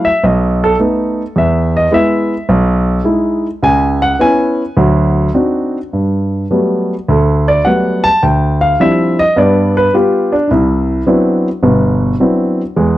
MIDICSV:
0, 0, Header, 1, 2, 480
1, 0, Start_track
1, 0, Tempo, 563910
1, 1174, Time_signature, 4, 2, 24, 8
1, 3088, Tempo, 577478
1, 6448, Tempo, 566572
1, 10945, End_track
2, 0, Start_track
2, 0, Title_t, "Grand piano"
2, 0, Program_c, 0, 0
2, 41, Note_on_c, 0, 76, 88
2, 195, Note_off_c, 0, 76, 0
2, 200, Note_on_c, 0, 35, 75
2, 209, Note_on_c, 0, 75, 69
2, 530, Note_off_c, 0, 75, 0
2, 542, Note_on_c, 0, 69, 89
2, 625, Note_off_c, 0, 35, 0
2, 633, Note_off_c, 0, 69, 0
2, 677, Note_on_c, 0, 57, 55
2, 682, Note_on_c, 0, 59, 51
2, 683, Note_on_c, 0, 63, 57
2, 1031, Note_off_c, 0, 57, 0
2, 1033, Note_off_c, 0, 59, 0
2, 1034, Note_off_c, 0, 63, 0
2, 1157, Note_on_c, 0, 40, 71
2, 1176, Note_on_c, 0, 76, 75
2, 1493, Note_off_c, 0, 76, 0
2, 1503, Note_on_c, 0, 75, 88
2, 1581, Note_off_c, 0, 40, 0
2, 1630, Note_on_c, 0, 56, 60
2, 1633, Note_on_c, 0, 59, 55
2, 1636, Note_on_c, 0, 64, 64
2, 1647, Note_off_c, 0, 75, 0
2, 1652, Note_on_c, 0, 76, 87
2, 1982, Note_off_c, 0, 56, 0
2, 1984, Note_off_c, 0, 59, 0
2, 1986, Note_off_c, 0, 64, 0
2, 2096, Note_off_c, 0, 76, 0
2, 2118, Note_on_c, 0, 35, 82
2, 2539, Note_off_c, 0, 35, 0
2, 2589, Note_on_c, 0, 56, 54
2, 2593, Note_on_c, 0, 63, 48
2, 2598, Note_on_c, 0, 64, 59
2, 2942, Note_off_c, 0, 56, 0
2, 2944, Note_off_c, 0, 63, 0
2, 2947, Note_off_c, 0, 64, 0
2, 3086, Note_on_c, 0, 37, 76
2, 3095, Note_on_c, 0, 80, 92
2, 3408, Note_off_c, 0, 80, 0
2, 3415, Note_on_c, 0, 78, 94
2, 3502, Note_off_c, 0, 37, 0
2, 3558, Note_on_c, 0, 59, 59
2, 3560, Note_off_c, 0, 78, 0
2, 3563, Note_on_c, 0, 61, 55
2, 3568, Note_on_c, 0, 64, 60
2, 3573, Note_on_c, 0, 80, 89
2, 3903, Note_off_c, 0, 59, 0
2, 3905, Note_off_c, 0, 61, 0
2, 3908, Note_off_c, 0, 64, 0
2, 4012, Note_off_c, 0, 80, 0
2, 4034, Note_on_c, 0, 38, 78
2, 4037, Note_on_c, 0, 54, 72
2, 4458, Note_off_c, 0, 38, 0
2, 4460, Note_off_c, 0, 54, 0
2, 4512, Note_on_c, 0, 60, 49
2, 4515, Note_on_c, 0, 62, 51
2, 4515, Note_on_c, 0, 63, 46
2, 4520, Note_on_c, 0, 66, 57
2, 4868, Note_off_c, 0, 60, 0
2, 4869, Note_off_c, 0, 62, 0
2, 4869, Note_off_c, 0, 63, 0
2, 4872, Note_off_c, 0, 66, 0
2, 5002, Note_on_c, 0, 43, 57
2, 5424, Note_off_c, 0, 43, 0
2, 5481, Note_on_c, 0, 54, 52
2, 5481, Note_on_c, 0, 57, 49
2, 5483, Note_on_c, 0, 55, 51
2, 5487, Note_on_c, 0, 59, 56
2, 5831, Note_off_c, 0, 54, 0
2, 5831, Note_off_c, 0, 57, 0
2, 5832, Note_off_c, 0, 55, 0
2, 5834, Note_off_c, 0, 59, 0
2, 5961, Note_on_c, 0, 38, 70
2, 5976, Note_on_c, 0, 69, 65
2, 6291, Note_on_c, 0, 74, 85
2, 6292, Note_off_c, 0, 69, 0
2, 6382, Note_off_c, 0, 38, 0
2, 6429, Note_on_c, 0, 78, 85
2, 6436, Note_on_c, 0, 55, 44
2, 6437, Note_on_c, 0, 54, 52
2, 6439, Note_off_c, 0, 74, 0
2, 6440, Note_on_c, 0, 57, 43
2, 6440, Note_on_c, 0, 59, 55
2, 6758, Note_off_c, 0, 78, 0
2, 6758, Note_on_c, 0, 81, 103
2, 6787, Note_off_c, 0, 55, 0
2, 6788, Note_off_c, 0, 54, 0
2, 6789, Note_off_c, 0, 57, 0
2, 6789, Note_off_c, 0, 59, 0
2, 6915, Note_off_c, 0, 81, 0
2, 6920, Note_on_c, 0, 79, 65
2, 6922, Note_on_c, 0, 38, 63
2, 7245, Note_on_c, 0, 77, 88
2, 7246, Note_off_c, 0, 79, 0
2, 7346, Note_off_c, 0, 38, 0
2, 7400, Note_off_c, 0, 77, 0
2, 7405, Note_on_c, 0, 53, 61
2, 7407, Note_on_c, 0, 55, 52
2, 7407, Note_on_c, 0, 62, 50
2, 7408, Note_on_c, 0, 60, 48
2, 7411, Note_on_c, 0, 64, 62
2, 7413, Note_on_c, 0, 76, 88
2, 7731, Note_off_c, 0, 76, 0
2, 7738, Note_on_c, 0, 75, 94
2, 7752, Note_off_c, 0, 53, 0
2, 7753, Note_off_c, 0, 55, 0
2, 7753, Note_off_c, 0, 60, 0
2, 7753, Note_off_c, 0, 62, 0
2, 7755, Note_off_c, 0, 64, 0
2, 7882, Note_on_c, 0, 59, 71
2, 7884, Note_on_c, 0, 43, 75
2, 7885, Note_off_c, 0, 75, 0
2, 7896, Note_on_c, 0, 74, 80
2, 8212, Note_off_c, 0, 74, 0
2, 8227, Note_on_c, 0, 71, 86
2, 8305, Note_off_c, 0, 59, 0
2, 8306, Note_off_c, 0, 43, 0
2, 8367, Note_on_c, 0, 55, 52
2, 8371, Note_off_c, 0, 71, 0
2, 8373, Note_on_c, 0, 59, 50
2, 8375, Note_on_c, 0, 65, 59
2, 8375, Note_on_c, 0, 67, 71
2, 8694, Note_off_c, 0, 67, 0
2, 8696, Note_on_c, 0, 62, 77
2, 8715, Note_off_c, 0, 55, 0
2, 8718, Note_off_c, 0, 59, 0
2, 8719, Note_off_c, 0, 65, 0
2, 8827, Note_on_c, 0, 63, 42
2, 8845, Note_off_c, 0, 62, 0
2, 8854, Note_on_c, 0, 36, 71
2, 8863, Note_off_c, 0, 63, 0
2, 8863, Note_on_c, 0, 64, 61
2, 9269, Note_off_c, 0, 36, 0
2, 9320, Note_off_c, 0, 64, 0
2, 9326, Note_on_c, 0, 54, 61
2, 9326, Note_on_c, 0, 59, 53
2, 9328, Note_on_c, 0, 62, 53
2, 9329, Note_on_c, 0, 60, 54
2, 9332, Note_on_c, 0, 64, 62
2, 9670, Note_off_c, 0, 54, 0
2, 9670, Note_off_c, 0, 59, 0
2, 9671, Note_off_c, 0, 62, 0
2, 9672, Note_off_c, 0, 60, 0
2, 9673, Note_off_c, 0, 64, 0
2, 9800, Note_on_c, 0, 31, 74
2, 9804, Note_on_c, 0, 47, 73
2, 10220, Note_off_c, 0, 31, 0
2, 10222, Note_off_c, 0, 47, 0
2, 10287, Note_on_c, 0, 54, 54
2, 10290, Note_on_c, 0, 59, 47
2, 10290, Note_on_c, 0, 62, 45
2, 10291, Note_on_c, 0, 60, 47
2, 10293, Note_on_c, 0, 64, 57
2, 10630, Note_off_c, 0, 54, 0
2, 10631, Note_off_c, 0, 59, 0
2, 10632, Note_off_c, 0, 60, 0
2, 10632, Note_off_c, 0, 62, 0
2, 10633, Note_off_c, 0, 64, 0
2, 10764, Note_on_c, 0, 56, 70
2, 10766, Note_on_c, 0, 40, 67
2, 10945, Note_off_c, 0, 40, 0
2, 10945, Note_off_c, 0, 56, 0
2, 10945, End_track
0, 0, End_of_file